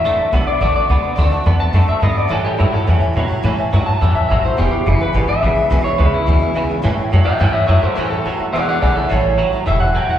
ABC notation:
X:1
M:4/4
L:1/8
Q:1/4=212
K:Amix
V:1 name="Upright piano"
[dfa] [dfa] [dfa] [df=c'] [dfa] [dfa] [dfa] [dfa] | [df=c'] [dfa] [da] [df] [dfa] [da] [dfa] [dfa] | [cea] [cea] c [cea] [cef] [cea] [ceb] [cea] | [cea] [cea] [ce] [cea] [cea] [cea] [ceg] [cef] |
[Be^g] [Bef] [Beb] [Beg] [Beg] [Beg] [Beg] [Bef] | [Be^g] [Beb] [Beg] [Beb] [Beg] [Beg] [Beg] [Beg] | [cea] [ceg] [cea] [cea] [cea] [ca] [cea] [cea] | [cef] [cea] [cea] [cea] [Be^g] [Beg] [Beg] g |
[cea] [cea] [eb] [cea] [ceb] [cea] [cea] [ceg] |]
V:2 name="Clean electric guitar"
e3 d d d3- | d z2 a2 e ^d =d | A G E A z4 | z3 a2 e e =c |
G G E B z e3- | e c B E4 z | z3 [eg] [eg] [ce] [ce] [A=c] | [A=c] A z2 [df] [df] [df] [Ae] |
c3 z e f g f |]
V:3 name="Steel-string acoustic guitar"
[D,A,=CF] [A,CF] [D,A,CF] [A,CF] [D,A,CF] [A,CF] [D,A,CF] [A,CF] | [D,A,=CF] [A,CF] [D,A,CF] [A,CF] [D,A,CF] [A,CF] [D,A,CF] [A,CF] | [A,,E,G,CE] [G,CE] [E,G,CE] [G,CE] [A,,E,G,CE] [G,CE] [E,G,CE] [G,CE] | [A,,E,G,CE] [G,CE] [E,G,CE] [G,CE] [A,,E,G,CE] [G,CE] [E,G,CE] [G,CE] |
[E,,B,,E,^G,DE] [E,G,DE] [E,G,DE] [E,G,DE] [E,,B,,E,G,DE] [E,G,DE] [E,G,DE] [E,G,DE] | [E,,B,,E,^G,DE] [E,G,DE] [E,G,DE] [E,G,DE] [E,,B,,E,G,DE] [E,G,DE] [E,G,DE] [E,G,DE] | [A,,E,G,CE] [G,CE] [E,G,CE] [G,CE] [A,,E,G,CE] [G,CE] [E,G,CE] [G,CE] | [A,,E,G,CE] [G,CE] [E,G,CE] [G,CE] [E,,B,,E,^G,DE] [E,G,DE] [E,G,DE] [E,G,DE] |
[A,,E,G,CE] [G,CE] [E,G,CE] [G,CE] [A,,E,G,CE] [G,CE] [E,G,CE] [G,CE] |]
V:4 name="Clean electric guitar" clef=bass
[D,A,]2 [D,B,]2 [D,A,]2 [D,B,]2 | [D,A,]2 [D,B,]2 [D,A,]2 [D,B,]2 | [A,,E,]2 [A,,F,]2 [A,,E,]2 [A,,F,]2 | [A,,E,]2 [A,,F,]2 [A,,E,]2 [A,,F,]2 |
[E,,B,,]2 [E,,C,]2 [E,,B,,]2 [E,,C,]2 | [E,,B,,]2 [E,,C,]2 [E,,B,,]2 [E,,C,]2 | [A,,E,]2 [A,,F,]2 [A,,E,]2 [A,,F,]2 | [A,,E,]2 [A,,F,]2 [E,,B,,]2 [E,,C,]2 |
[A,,E,]2 [A,,F,]2 [A,,E,]2 [A,,F,]2 |]
V:5 name="Upright bass" clef=bass
D,, z B,,, z A,,, z =C,, z | D,, z E,, z F,, z G,, z | A,, z G,, z E,, z B,, z | A,, z G,, z E,, z A,,, z |
E,,, z F,,, z ^G,,, z A,,, z | B,,, z C,, z D,, z E,, z | A,, z F,, z G,, z F,, z | E,, z D,, z E,, z B,,, z |
A,,,3 z E,,,3 z |]